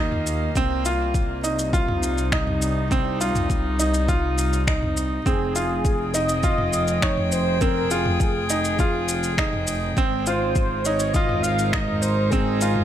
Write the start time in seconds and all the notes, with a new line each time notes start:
Already playing: D#2 D#3 A#3 D#4 F4 G4
0.12 mid tom
0.27 shaker
0.55 C2 C3 C4, kick, shaker
0.68 G3
0.85 F4, shaker
1.14 kick, shaker
1.44 D#4, shaker
1.59 shaker
1.73 F4, kick, shaker
1.81 C4
1.88 mid tom
1.94 D#4
2.03 shaker
2.18 shaker
2.32 D#4, finger snap, kick
2.47 mid tom
2.62 shaker
2.91 C4, kick, shaker
3.21 F4, shaker
3.36 mid tom, shaker
3.50 kick, shaker
3.79 D#4, shaker
3.94 shaker
4.09 F4, kick, shaker
4.38 shaker
4.53 shaker
4.67 D#4, finger snap, kick
4.82 mid tom
4.97 shaker
5.26 F1 F3 C4 G#4, kick, shaker
5.56 F4, shaker
5.85 kick, shaker
5.92 G5
6.14 D#4 G#4 D#5, shaker
6.29 shaker
6.43 F4, kick, shaker
6.58 mid tom
6.73 shaker
6.88 shaker
7.02 D#4 C#5, finger snap, kick
7.17 mid tom
7.32 C5, shaker
7.61 C4 A#4, kick, shaker
7.91 F4 G#4, shaker
8.06 mid tom
8.20 kick, shaker
8.50 D#4, shaker
8.65 shaker
8.79 F4, kick, shaker
9.09 shaker
9.23 shaker
9.38 D#4, finger snap, kick
9.53 mid tom
9.67 shaker
9.97 G#1 G#3 C4, kick, shaker
10.26 F4 C5, shaker
10.34 D#4
10.56 A#4, kick, shaker
10.85 D#4 C#5, shaker
11.00 C5, shaker
11.14 F4 D#5, kick, shaker
11.29 mid tom
11.43 F5, shaker
11.59 shaker
11.72 D#4 D#5, finger snap, kick
11.88 mid tom
12.02 C5, shaker
12.31 C4 G#4, kick, shaker
12.61 F4, shaker
12.76 mid tom